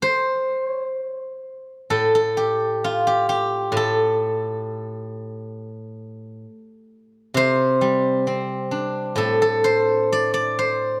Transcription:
0, 0, Header, 1, 2, 480
1, 0, Start_track
1, 0, Tempo, 934579
1, 23, Time_signature, 4, 2, 24, 8
1, 982, Tempo, 909091
1, 4342, Tempo, 927357
1, 5752, End_track
2, 0, Start_track
2, 0, Title_t, "Guzheng"
2, 0, Program_c, 0, 107
2, 12, Note_on_c, 0, 72, 82
2, 345, Note_off_c, 0, 72, 0
2, 345, Note_on_c, 0, 73, 82
2, 438, Note_off_c, 0, 73, 0
2, 438, Note_on_c, 0, 72, 82
2, 535, Note_off_c, 0, 72, 0
2, 535, Note_on_c, 0, 73, 82
2, 628, Note_off_c, 0, 73, 0
2, 628, Note_on_c, 0, 72, 82
2, 977, Note_on_c, 0, 45, 47
2, 977, Note_on_c, 0, 69, 72
2, 1031, Note_off_c, 0, 72, 0
2, 1105, Note_off_c, 0, 69, 0
2, 1107, Note_on_c, 0, 69, 68
2, 1224, Note_on_c, 0, 67, 64
2, 1474, Note_on_c, 0, 65, 65
2, 1591, Note_off_c, 0, 67, 0
2, 1593, Note_on_c, 0, 67, 64
2, 1707, Note_off_c, 0, 67, 0
2, 1709, Note_on_c, 0, 67, 65
2, 1929, Note_off_c, 0, 45, 0
2, 1936, Note_on_c, 0, 45, 55
2, 1959, Note_off_c, 0, 69, 0
2, 1961, Note_on_c, 0, 69, 78
2, 2809, Note_off_c, 0, 65, 0
2, 2953, Note_off_c, 0, 67, 0
2, 3120, Note_off_c, 0, 69, 0
2, 3372, Note_off_c, 0, 45, 0
2, 3850, Note_on_c, 0, 48, 61
2, 3863, Note_on_c, 0, 72, 94
2, 4097, Note_on_c, 0, 55, 47
2, 4339, Note_on_c, 0, 60, 42
2, 4568, Note_on_c, 0, 62, 44
2, 4798, Note_on_c, 0, 45, 53
2, 4808, Note_on_c, 0, 69, 75
2, 4811, Note_off_c, 0, 48, 0
2, 4898, Note_off_c, 0, 72, 0
2, 4931, Note_off_c, 0, 69, 0
2, 4933, Note_on_c, 0, 69, 76
2, 5049, Note_on_c, 0, 72, 78
2, 5054, Note_off_c, 0, 55, 0
2, 5295, Note_off_c, 0, 60, 0
2, 5299, Note_on_c, 0, 74, 87
2, 5407, Note_off_c, 0, 74, 0
2, 5409, Note_on_c, 0, 74, 80
2, 5533, Note_off_c, 0, 62, 0
2, 5536, Note_off_c, 0, 72, 0
2, 5538, Note_on_c, 0, 72, 69
2, 5752, Note_off_c, 0, 45, 0
2, 5752, Note_off_c, 0, 69, 0
2, 5752, Note_off_c, 0, 72, 0
2, 5752, Note_off_c, 0, 74, 0
2, 5752, End_track
0, 0, End_of_file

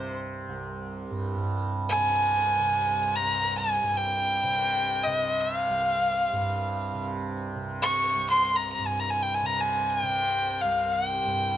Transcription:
0, 0, Header, 1, 3, 480
1, 0, Start_track
1, 0, Tempo, 500000
1, 11110, End_track
2, 0, Start_track
2, 0, Title_t, "Violin"
2, 0, Program_c, 0, 40
2, 0, Note_on_c, 0, 72, 80
2, 148, Note_off_c, 0, 72, 0
2, 1816, Note_on_c, 0, 80, 90
2, 3024, Note_on_c, 0, 82, 88
2, 3039, Note_off_c, 0, 80, 0
2, 3426, Note_off_c, 0, 82, 0
2, 3432, Note_on_c, 0, 80, 80
2, 3809, Note_on_c, 0, 79, 84
2, 3824, Note_off_c, 0, 80, 0
2, 4831, Note_on_c, 0, 75, 72
2, 4845, Note_off_c, 0, 79, 0
2, 5191, Note_on_c, 0, 76, 74
2, 5205, Note_off_c, 0, 75, 0
2, 5335, Note_off_c, 0, 76, 0
2, 5335, Note_on_c, 0, 77, 74
2, 6785, Note_off_c, 0, 77, 0
2, 7505, Note_on_c, 0, 85, 98
2, 7935, Note_off_c, 0, 85, 0
2, 7966, Note_on_c, 0, 84, 94
2, 8214, Note_on_c, 0, 82, 81
2, 8228, Note_off_c, 0, 84, 0
2, 8367, Note_off_c, 0, 82, 0
2, 8373, Note_on_c, 0, 82, 78
2, 8508, Note_on_c, 0, 80, 75
2, 8522, Note_off_c, 0, 82, 0
2, 8633, Note_on_c, 0, 82, 77
2, 8648, Note_off_c, 0, 80, 0
2, 8735, Note_on_c, 0, 80, 85
2, 8750, Note_off_c, 0, 82, 0
2, 8855, Note_on_c, 0, 79, 77
2, 8869, Note_off_c, 0, 80, 0
2, 8964, Note_on_c, 0, 80, 77
2, 8978, Note_off_c, 0, 79, 0
2, 9077, Note_on_c, 0, 82, 80
2, 9091, Note_off_c, 0, 80, 0
2, 9219, Note_on_c, 0, 80, 74
2, 9234, Note_off_c, 0, 82, 0
2, 9502, Note_off_c, 0, 80, 0
2, 9502, Note_on_c, 0, 80, 86
2, 9617, Note_off_c, 0, 80, 0
2, 9617, Note_on_c, 0, 79, 86
2, 10186, Note_on_c, 0, 77, 69
2, 10200, Note_off_c, 0, 79, 0
2, 10480, Note_on_c, 0, 79, 76
2, 10495, Note_off_c, 0, 77, 0
2, 11110, Note_off_c, 0, 79, 0
2, 11110, End_track
3, 0, Start_track
3, 0, Title_t, "Tanpura"
3, 0, Program_c, 1, 104
3, 0, Note_on_c, 1, 36, 58
3, 0, Note_on_c, 1, 43, 50
3, 0, Note_on_c, 1, 48, 61
3, 463, Note_off_c, 1, 36, 0
3, 467, Note_on_c, 1, 36, 64
3, 1058, Note_off_c, 1, 43, 0
3, 1062, Note_on_c, 1, 43, 56
3, 1297, Note_off_c, 1, 43, 0
3, 1297, Note_on_c, 1, 43, 52
3, 1879, Note_off_c, 1, 48, 0
3, 1879, Note_on_c, 1, 48, 52
3, 2488, Note_off_c, 1, 48, 0
3, 2488, Note_on_c, 1, 48, 49
3, 3072, Note_off_c, 1, 36, 0
3, 3076, Note_on_c, 1, 36, 52
3, 3671, Note_off_c, 1, 43, 0
3, 3671, Note_on_c, 1, 43, 50
3, 4258, Note_off_c, 1, 48, 0
3, 4258, Note_on_c, 1, 48, 54
3, 4865, Note_off_c, 1, 48, 0
3, 4865, Note_on_c, 1, 48, 50
3, 5464, Note_off_c, 1, 36, 0
3, 5468, Note_on_c, 1, 36, 57
3, 6069, Note_off_c, 1, 43, 0
3, 6073, Note_on_c, 1, 43, 58
3, 6656, Note_off_c, 1, 48, 0
3, 6656, Note_on_c, 1, 48, 50
3, 7251, Note_off_c, 1, 48, 0
3, 7251, Note_on_c, 1, 48, 52
3, 7825, Note_off_c, 1, 36, 0
3, 7829, Note_on_c, 1, 36, 54
3, 8429, Note_off_c, 1, 43, 0
3, 8433, Note_on_c, 1, 43, 50
3, 9050, Note_off_c, 1, 48, 0
3, 9050, Note_on_c, 1, 48, 53
3, 9627, Note_off_c, 1, 48, 0
3, 9627, Note_on_c, 1, 48, 60
3, 10216, Note_off_c, 1, 36, 0
3, 10219, Note_on_c, 1, 36, 62
3, 10799, Note_off_c, 1, 43, 0
3, 10803, Note_on_c, 1, 43, 51
3, 11110, Note_off_c, 1, 36, 0
3, 11110, Note_off_c, 1, 43, 0
3, 11110, Note_off_c, 1, 48, 0
3, 11110, End_track
0, 0, End_of_file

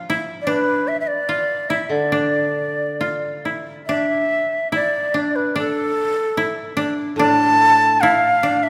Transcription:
0, 0, Header, 1, 4, 480
1, 0, Start_track
1, 0, Tempo, 816327
1, 280, Time_signature, 2, 2, 24, 8
1, 1246, Tempo, 869565
1, 2686, Tempo, 823045
1, 4998, End_track
2, 0, Start_track
2, 0, Title_t, "Shakuhachi"
2, 0, Program_c, 0, 77
2, 243, Note_on_c, 0, 74, 56
2, 282, Note_on_c, 0, 71, 77
2, 291, Note_off_c, 0, 74, 0
2, 515, Note_on_c, 0, 76, 79
2, 524, Note_off_c, 0, 71, 0
2, 586, Note_off_c, 0, 76, 0
2, 589, Note_on_c, 0, 76, 57
2, 630, Note_on_c, 0, 74, 80
2, 639, Note_off_c, 0, 76, 0
2, 996, Note_on_c, 0, 76, 68
2, 1005, Note_off_c, 0, 74, 0
2, 1122, Note_on_c, 0, 74, 69
2, 1131, Note_off_c, 0, 76, 0
2, 1981, Note_off_c, 0, 74, 0
2, 2211, Note_on_c, 0, 76, 87
2, 2660, Note_off_c, 0, 76, 0
2, 2696, Note_on_c, 0, 74, 82
2, 3052, Note_on_c, 0, 71, 67
2, 3061, Note_off_c, 0, 74, 0
2, 3169, Note_off_c, 0, 71, 0
2, 3182, Note_on_c, 0, 69, 73
2, 3858, Note_off_c, 0, 69, 0
2, 4117, Note_on_c, 0, 81, 104
2, 4598, Note_on_c, 0, 77, 91
2, 4607, Note_off_c, 0, 81, 0
2, 4962, Note_on_c, 0, 76, 74
2, 4970, Note_off_c, 0, 77, 0
2, 4998, Note_off_c, 0, 76, 0
2, 4998, End_track
3, 0, Start_track
3, 0, Title_t, "Koto"
3, 0, Program_c, 1, 107
3, 0, Note_on_c, 1, 62, 65
3, 0, Note_on_c, 1, 65, 58
3, 56, Note_on_c, 1, 64, 59
3, 92, Note_off_c, 1, 65, 0
3, 273, Note_off_c, 1, 62, 0
3, 275, Note_on_c, 1, 62, 73
3, 757, Note_on_c, 1, 65, 57
3, 792, Note_off_c, 1, 64, 0
3, 1000, Note_on_c, 1, 64, 57
3, 1035, Note_off_c, 1, 65, 0
3, 1245, Note_off_c, 1, 62, 0
3, 1247, Note_on_c, 1, 62, 65
3, 1736, Note_on_c, 1, 65, 47
3, 1769, Note_off_c, 1, 64, 0
3, 1982, Note_on_c, 1, 64, 45
3, 2015, Note_off_c, 1, 65, 0
3, 2221, Note_off_c, 1, 62, 0
3, 2223, Note_on_c, 1, 62, 68
3, 2681, Note_off_c, 1, 64, 0
3, 2683, Note_on_c, 1, 64, 57
3, 2925, Note_off_c, 1, 62, 0
3, 2927, Note_on_c, 1, 62, 57
3, 3166, Note_off_c, 1, 62, 0
3, 3169, Note_on_c, 1, 62, 69
3, 3643, Note_off_c, 1, 64, 0
3, 3646, Note_on_c, 1, 64, 62
3, 3873, Note_off_c, 1, 62, 0
3, 3875, Note_on_c, 1, 62, 62
3, 4122, Note_off_c, 1, 62, 0
3, 4124, Note_on_c, 1, 62, 81
3, 4609, Note_off_c, 1, 64, 0
3, 4611, Note_on_c, 1, 64, 69
3, 4844, Note_off_c, 1, 62, 0
3, 4846, Note_on_c, 1, 62, 69
3, 4998, Note_off_c, 1, 62, 0
3, 4998, Note_off_c, 1, 64, 0
3, 4998, End_track
4, 0, Start_track
4, 0, Title_t, "Koto"
4, 0, Program_c, 2, 107
4, 0, Note_on_c, 2, 53, 40
4, 629, Note_off_c, 2, 53, 0
4, 1114, Note_on_c, 2, 50, 42
4, 2567, Note_off_c, 2, 50, 0
4, 4104, Note_on_c, 2, 45, 51
4, 4998, Note_off_c, 2, 45, 0
4, 4998, End_track
0, 0, End_of_file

